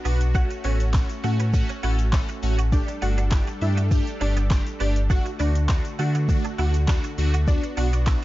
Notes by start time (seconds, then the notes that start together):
Already playing: B3 D4 F#4
0.05 B1 B3 D4 F#4, open hi-hat, shaker
0.21 closed hi-hat, shaker
0.34 A3 C#4 F#4 F#5, kick, shaker
0.51 muted clean electric guitar stroke, closed hi-hat, shaker
0.64 A1 A3 B3 C#4 F#4 C#5, open hi-hat, shaker
0.80 closed hi-hat, shaker
0.93 A3 C#4 F#4, muted clean electric guitar stroke, kick, snare, clap, shaker
1.09 closed hi-hat, shaker
1.24 A2 A3 C#4 F#4 F#5, open hi-hat, shaker
1.40 B3, closed hi-hat, shaker
1.53 A3 C#4 F#4, muted clean electric guitar stroke, kick, shaker
1.69 C#4, closed hi-hat, shaker
1.83 A1 A3 C#4 E4 F#4 A4 F#5, open hi-hat, shaker
1.99 closed hi-hat, shaker
2.12 A3 C#4 A4, kick, snare, clap, shaker
2.29 muted clean electric guitar stroke, closed hi-hat, shaker
2.43 A1 A3 C#4 F#4, open hi-hat, shaker
2.59 F#4, closed hi-hat, shaker
2.72 G3 A3 D4 G4 A4 D5, kick, shaker
2.88 muted clean electric guitar stroke, closed hi-hat, shaker
3.02 G1 A3 D4 F#4 F#5, open hi-hat, shaker
3.18 D4, closed hi-hat, shaker
3.31 A3 D4 E4 G4, kick, snare, clap, shaker
3.47 muted clean electric guitar stroke, closed hi-hat, shaker
3.61 G2 A3 D4 E4 G4 E5, open hi-hat, shaker
3.77 F#4, closed hi-hat, shaker
3.91 A3 D4 G4, muted clean electric guitar stroke, kick, shaker
4.07 closed hi-hat, shaker
4.21 G1 A3 D4 G4 D5, open hi-hat, shaker
4.37 B3, closed hi-hat, shaker
4.50 A3 D4 G4, kick, snare, clap, shaker
4.66 closed hi-hat, shaker
4.80 G1 A3 B3 D4 G4 D5, open hi-hat, shaker
4.96 closed hi-hat, shaker
5.10 D3 A3 D4 F#4 F#5, kick, shaker
5.26 muted clean electric guitar stroke, closed hi-hat, shaker
5.39 D2 A3 B3 D4 F#4 D5, open hi-hat, shaker
5.55 closed hi-hat, shaker
5.68 A3 D4 F#4, muted clean electric guitar stroke, kick, snare, clap, shaker
5.85 closed hi-hat, shaker
5.99 D3 A3 D4 F#4 F#5, open hi-hat, shaker
6.15 B3, closed hi-hat, shaker
6.29 A3 D4 F#4, muted clean electric guitar stroke, kick, shaker
6.45 D4, closed hi-hat, shaker
6.58 D2 A3 D4 E4 F#4 F#5, open hi-hat, shaker
6.74 closed hi-hat, shaker
6.88 A3 D4 F#4, kick, snare, clap, shaker
7.04 muted clean electric guitar stroke, closed hi-hat, shaker
7.18 D2 A3 D4 F#4, open hi-hat, shaker
7.34 F#4, closed hi-hat, shaker
7.47 B3 D4 F#4 D5, kick, shaker
7.63 muted clean electric guitar stroke, closed hi-hat, shaker
7.77 B1 B3 D4 F#4 F#5, open hi-hat, shaker
7.93 D4, closed hi-hat, shaker
8.06 B3 D4 E4 F#4, kick, snare, clap, shaker